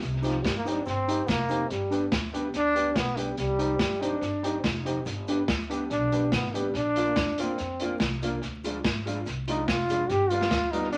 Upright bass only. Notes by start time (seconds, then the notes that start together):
0.03 C2
0.45 G1
0.87 G1
1.29 F1
1.71 G1
2.12 D2
2.55 D2
2.96 B1
3.38 C2
4.21 G1
4.65 F1
5.06 G1
5.49 D2
5.91 B1
6.33 G#1
6.75 A#1
7.17 F2
7.60 F2
8.01 C2
8.43 D2
8.85 G#1
9.28 C2
9.68 F1
10.10 G1
10.51 D2
10.94 D2